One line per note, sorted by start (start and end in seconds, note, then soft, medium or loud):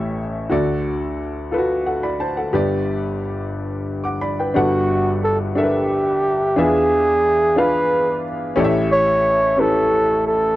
0.00 0.47 A1 medium
0.00 0.47 A2 medium
0.00 0.17 C#4 medium
0.00 0.17 E4 medium
0.00 0.18 G4 medium
0.00 0.18 A4 medium
0.00 0.18 E5 medium
0.50 2.49 D2 medium
0.50 2.49 D3 medium
0.50 1.18 F#4 medium
0.50 1.18 A4 medium
0.50 1.19 D5 medium
1.51 1.58 F4 medium
1.51 1.86 A4 medium
1.51 1.87 B4 medium
1.58 2.22 F#4 medium
1.86 2.02 A4 soft
1.86 2.02 F#5 medium
2.03 2.19 D5 medium
2.03 2.19 B5 medium
2.20 2.36 C5 soft
2.20 2.36 A5 medium
2.37 2.69 A4 soft
2.37 2.69 F#5 soft
2.53 4.51 G1 medium
2.53 4.51 G2 medium
2.53 3.20 G4 medium
2.53 3.21 B4 medium
2.53 3.21 D5 medium
4.04 4.20 F#5 soft
4.04 4.20 D6 medium
4.21 4.37 D5 soft
4.21 4.37 B5 medium
4.39 4.55 B4 soft
4.39 4.70 G5 soft
4.54 6.52 G1 medium
4.54 6.52 G2 medium
4.54 5.22 G3 medium
4.54 5.21 D4 medium
4.54 5.18 F#4 medium
4.54 5.22 A4 medium
4.54 5.23 B4 medium
4.54 5.22 F#5 medium
5.24 5.38 A4 medium
5.55 6.22 D4 medium
5.55 6.23 G4 soft
5.55 6.60 G4 medium
5.55 6.23 A4 medium
5.55 5.63 A#4 soft
5.55 6.24 E5 medium
5.64 6.26 B4 medium
6.56 8.54 E2 medium
6.56 8.54 E3 medium
6.56 7.23 D4 medium
6.56 7.23 F4 medium
6.56 7.24 G#4 medium
6.56 7.60 G#4 medium
6.56 7.24 B4 medium
6.56 7.24 E5 medium
7.56 8.23 D4 medium
7.56 8.23 F4 medium
7.56 8.24 G#4 medium
7.56 8.24 B4 medium
7.56 8.33 B4 medium
7.56 8.24 F5 medium
8.56 10.54 A1 medium
8.56 10.54 A2 medium
8.56 9.23 C#4 medium
8.56 9.24 E4 medium
8.56 9.24 G4 medium
8.56 9.24 A4 medium
8.56 8.64 D5 medium
8.64 9.28 E5 medium
8.92 9.61 C#5 loud
9.57 10.24 C#4 medium
9.57 10.25 E4 medium
9.57 10.25 G4 medium
9.57 10.26 A4 medium
9.57 10.26 B4 medium
10.27 10.56 A4 medium